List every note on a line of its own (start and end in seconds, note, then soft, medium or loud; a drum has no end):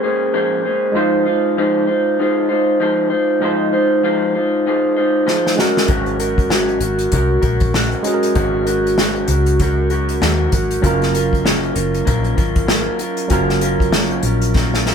0.00 0.89 A#3 medium
0.00 0.90 C#4 medium
0.00 0.91 G#4 medium
0.00 0.33 G#4 medium
0.00 0.92 A#4 medium
0.00 0.33 C5 medium
0.04 0.33 G#3 soft
0.04 0.33 C#4 soft
0.33 0.64 A#2 medium
0.33 0.64 F3 medium
0.33 0.64 G#3 medium
0.33 0.64 C#4 medium
0.33 0.65 G#4 medium
0.33 0.64 C5 medium
0.65 0.94 G#3 soft
0.65 0.95 C#4 soft
0.65 0.96 G#4 soft
0.65 0.95 C5 medium
0.92 1.26 F3 medium
0.92 3.37 G#3 medium
0.92 1.26 G#3 medium
0.92 3.37 D#4 medium
0.92 1.26 D#4 medium
0.92 3.38 F4 medium
0.96 1.25 F4 medium
0.96 1.24 C5 medium
0.96 3.39 C5 medium
1.25 1.57 D#4 soft
1.25 1.57 F4 medium
1.25 1.56 C5 medium
1.57 1.88 F3 medium
1.57 1.88 G#3 medium
1.57 1.88 D#4 medium
1.57 1.87 F4 medium
1.57 1.86 C5 medium
1.87 2.18 D#4 soft
1.87 2.19 F4 soft
1.87 2.18 C5 medium
2.19 2.50 G#3 medium
2.19 2.50 D#4 medium
2.19 2.49 F4 medium
2.19 2.48 C5 medium
2.49 2.79 D#4 soft
2.49 2.80 F4 soft
2.49 2.80 C5 medium
2.80 3.11 F3 medium
2.80 3.11 G#3 medium
2.80 3.11 D#4 medium
2.80 3.10 F4 medium
2.80 3.09 C5 medium
3.10 3.41 D#4 soft
3.10 3.42 F4 soft
3.10 3.41 C5 medium
3.40 3.73 F3 medium
3.40 5.54 G#3 medium
3.40 3.73 G#3 medium
3.40 5.54 D#4 medium
3.40 3.73 D#4 medium
3.40 3.72 F4 medium
3.40 5.55 F4 medium
3.40 3.71 C5 medium
3.45 5.56 C5 medium
3.73 4.03 D#4 soft
3.73 4.03 F4 medium
3.73 4.03 C5 medium
4.03 4.35 F3 medium
4.03 4.35 G#3 medium
4.03 4.35 D#4 medium
4.03 4.34 F4 medium
4.03 4.33 C5 loud
4.34 4.66 D#4 soft
4.34 4.66 F4 soft
4.34 4.65 C5 medium
4.66 4.97 G#3 medium
4.66 4.97 D#4 medium
4.66 4.97 F4 medium
4.66 4.95 C5 medium
4.96 5.26 D#4 soft
4.96 5.27 F4 soft
4.96 5.26 C5 medium
5.26 5.58 F3 medium
5.26 5.58 G#3 medium
5.26 5.58 D#4 medium
5.26 5.58 F4 medium
5.26 5.57 C5 medium
5.26 snare medium
5.47 snare medium
5.55 8.00 G#3 medium
5.55 8.01 C#4 medium
5.55 5.89 C#4 soft
5.55 5.89 F#4 soft
5.55 8.02 F#4 medium
5.55 5.89 A#4 medium
5.55 snare medium
5.60 5.88 F#3 soft
5.60 8.03 A#4 medium
5.77 snare medium
5.88 6.77 G#1 medium
5.88 6.20 G#2 medium
5.88 6.20 C#3 medium
5.88 6.20 F#3 medium
5.88 6.20 C#4 medium
5.88 6.19 F#4 medium
5.88 6.18 A#4 medium
5.88 kick loud
5.88 closed hi-hat medium
6.06 closed hi-hat soft
6.20 6.49 F#3 soft
6.20 6.50 C#4 medium
6.20 6.50 F#4 medium
6.20 6.50 A#4 medium
6.20 closed hi-hat medium
6.38 kick medium
6.38 closed hi-hat soft
6.50 6.81 G#2 medium
6.50 6.82 C#3 medium
6.50 6.81 F#3 medium
6.50 6.81 C#4 medium
6.50 6.80 F#4 medium
6.50 6.79 A#4 medium
6.50 snare loud
6.69 closed hi-hat soft
6.80 7.06 G#1 medium
6.80 7.11 F#3 soft
6.80 7.12 C#4 soft
6.80 7.12 F#4 soft
6.80 7.12 A#4 soft
6.80 closed hi-hat medium
6.99 closed hi-hat soft
7.12 7.37 C2 medium
7.12 7.43 F#3 medium
7.12 7.42 C#4 medium
7.12 7.42 F#4 medium
7.12 7.41 A#4 medium
7.12 kick medium
7.12 closed hi-hat medium
7.42 7.93 A#1 medium
7.42 7.74 F#3 soft
7.42 7.74 C#4 soft
7.42 7.74 F#4 medium
7.42 7.74 A#4 medium
7.42 kick medium
7.42 closed hi-hat medium
7.60 kick medium
7.60 closed hi-hat medium
7.74 8.05 G#2 medium
7.74 8.05 C#3 medium
7.74 8.06 F#3 medium
7.74 8.06 C#4 medium
7.74 8.05 F#4 medium
7.74 8.04 A#4 medium
7.74 snare loud
7.91 closed hi-hat soft
8.03 10.47 G#3 medium
8.03 10.48 C#4 medium
8.03 8.35 F#4 soft
8.03 10.49 F#4 medium
8.03 8.35 A#4 medium
8.03 closed hi-hat medium
8.07 8.35 F#3 soft
8.07 8.35 C#4 soft
8.07 8.14 G#4 medium
8.14 10.53 A#4 medium
8.23 closed hi-hat medium
8.35 9.25 G#1 loud
8.35 8.67 G#2 medium
8.35 8.67 C#3 medium
8.35 8.67 F#3 medium
8.35 8.67 C#4 medium
8.35 8.66 F#4 medium
8.35 8.65 A#4 medium
8.35 kick medium
8.35 closed hi-hat medium
8.66 8.97 F#3 soft
8.66 8.98 C#4 soft
8.66 8.98 F#4 medium
8.66 8.98 A#4 medium
8.66 closed hi-hat medium
8.87 closed hi-hat soft
8.98 9.29 G#2 medium
8.98 9.29 C#3 medium
8.98 9.29 F#3 medium
8.98 9.30 C#4 medium
8.98 9.29 F#4 medium
8.98 9.28 A#4 loud
8.98 snare loud
9.16 closed hi-hat soft
9.28 10.17 C#2 medium
9.28 9.60 C#4 soft
9.28 9.60 F#4 soft
9.28 9.60 A#4 soft
9.28 closed hi-hat medium
9.32 9.59 F#3 soft
9.46 closed hi-hat soft
9.60 9.91 F#3 medium
9.60 9.91 C#4 medium
9.60 9.90 F#4 medium
9.60 9.89 A#4 medium
9.60 kick medium
9.60 closed hi-hat medium
9.90 10.21 F#3 soft
9.90 10.21 C#4 soft
9.90 10.21 F#4 soft
9.90 10.21 A#4 soft
9.90 closed hi-hat medium
10.09 closed hi-hat medium
10.21 10.46 D#2 medium
10.21 10.52 G#2 medium
10.21 10.53 C#3 medium
10.21 10.53 F#3 medium
10.21 10.53 C#4 medium
10.21 10.51 F#4 medium
10.21 10.51 A#4 medium
10.21 snare loud
10.52 10.77 G#1 medium
10.52 10.81 F#3 soft
10.52 10.82 C#4 soft
10.52 10.82 F#4 medium
10.52 10.82 A#4 medium
10.52 kick medium
10.52 closed hi-hat medium
10.71 closed hi-hat medium
10.81 11.72 F#1 loud
10.81 13.26 F#3 medium
10.81 11.14 F#3 medium
10.81 11.14 A#3 medium
10.81 11.14 C#4 medium
10.81 13.27 C#4 medium
10.81 11.14 F4 medium
10.81 13.28 F4 medium
10.81 11.13 A#4 medium
10.81 kick medium
10.81 closed hi-hat medium
10.87 13.28 A#4 medium
11.02 snare soft
11.02 closed hi-hat soft
11.14 11.44 C#4 soft
11.14 11.45 F4 medium
11.14 11.45 A#4 medium
11.14 closed hi-hat medium
11.33 kick medium
11.33 closed hi-hat soft
11.45 11.76 F#3 medium
11.45 11.76 A#3 medium
11.45 11.76 C#4 medium
11.45 11.75 F4 loud
11.45 11.74 A#4 medium
11.45 snare loud
11.63 closed hi-hat soft
11.75 12.01 F#1 medium
11.75 12.05 C#4 soft
11.75 12.06 F4 soft
11.75 12.07 A#4 soft
11.75 closed hi-hat medium
11.94 closed hi-hat soft
12.05 12.32 A#1 medium
12.05 12.37 A#3 medium
12.05 12.37 C#4 medium
12.05 12.36 F4 medium
12.05 12.35 A#4 medium
12.05 kick medium
12.05 closed hi-hat medium
12.24 closed hi-hat soft
12.36 12.87 G#1 medium
12.36 12.67 C#4 soft
12.36 12.67 F4 soft
12.36 12.68 A#4 medium
12.36 kick medium
12.36 closed hi-hat medium
12.56 kick medium
12.56 closed hi-hat medium
12.67 12.99 F#3 medium
12.67 13.00 A#3 medium
12.67 13.00 C#4 medium
12.67 12.99 F4 medium
12.67 12.98 A#4 loud
12.67 snare loud
12.99 13.30 C#4 soft
12.99 13.30 F4 soft
12.99 13.30 A#4 medium
12.99 closed hi-hat medium
13.17 closed hi-hat medium
13.28 14.19 F#1 medium
13.28 14.95 F#3 medium
13.28 13.62 F#3 medium
13.28 13.62 A#3 medium
13.28 14.95 C#4 medium
13.28 13.62 C#4 medium
13.28 13.61 F4 medium
13.28 14.95 F4 medium
13.28 13.61 A#4 medium
13.28 kick medium
13.28 closed hi-hat medium
13.33 14.95 A#4 medium
13.49 snare soft
13.61 13.92 C#4 medium
13.61 13.92 F4 medium
13.61 13.93 A#4 medium
13.61 closed hi-hat medium
13.80 kick medium
13.80 closed hi-hat soft
13.92 14.23 F#3 medium
13.92 14.24 A#3 medium
13.92 14.24 C#4 medium
13.92 14.24 F4 medium
13.92 14.23 A#4 medium
13.92 snare loud
14.11 closed hi-hat soft
14.23 14.95 A#1 medium
14.23 14.55 C#4 soft
14.23 14.55 F4 soft
14.23 14.55 A#4 soft
14.23 closed hi-hat medium
14.42 closed hi-hat soft
14.55 14.86 A#3 medium
14.55 14.86 C#4 medium
14.55 14.87 F4 medium
14.55 14.86 A#4 medium
14.55 kick medium
14.55 snare medium
14.74 snare soft
14.86 14.95 C#4 soft
14.86 14.95 F4 medium
14.86 14.95 A#4 medium
14.86 snare medium